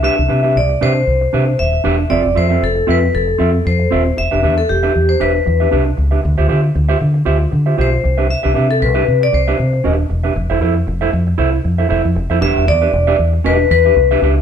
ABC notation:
X:1
M:4/4
L:1/16
Q:"Swing 16ths" 1/4=116
K:Ephr
V:1 name="Vibraphone"
e4 d2 c6 e4 | d2 c2 A2 B2 A4 c4 | e3 A G3 c B4 z4 | z12 c4 |
e3 A B3 d c4 z4 | z16 | e2 d4 z2 B2 B4 z2 |]
V:2 name="Clean electric guitar"
[DGBe] z [DGBe] [DGBe] z2 [DGBe] z3 [DGBe] z3 [DGBe] z | [CFAe] z [CFAe] [CFAe] z2 [CFAe] z3 [CFAe] z3 [CFAe] z | z [DGBe] [DGBe] z2 [DGBe] z2 [DGBe] z2 [DGBe] [DGBe] z2 [DGBe] | z [FGce] [FGce] z2 [FGce] z2 [FGce] z2 [FGce] [FGce] z2 [DGBe] |
z [DGBe] [DGBe] z2 [DGBe] z3 [DGBe] z2 [DGBe]2 z [DGBe] | z [EAce] [EAce] z2 [EAce] z2 [EAce] z2 [EAce] [EAce] z2 [EAce] | [DGBe]2 z [DGBe] z [DGBe] z2 [DGBe]2 z [DGBe] z [DGBe] [DGBe] z |]
V:3 name="Fingered electric bass" clef=bass
z C,, C,2 C,,2 C,2 C,,2 C,2 _E,,,2 =E,,,2 | F,,, F,,, F,,2 F,,,2 F,,2 F,,,2 F,,2 F,,2 _E,,,2 | E,,, E,,, E,,2 E,,,2 E,,2 E,,,2 E,,2 C,,2 ^C,,2 | D,, D,, D,2 D,,2 D,2 D,,2 D,2 B,,,2 C,,2- |
C,, C,, C,2 C,,2 C,2 C,,2 C,2 _E,,,2 =E,,,2 | F,,, F,,, F,,2 F,,,2 F,,2 C,,2 F,,2 F,,, F,, F,,, F,, | E,,, E,,, E,,2 E,,,2 E,,2 E,,,2 E,,2 C,,2 ^C,,2 |]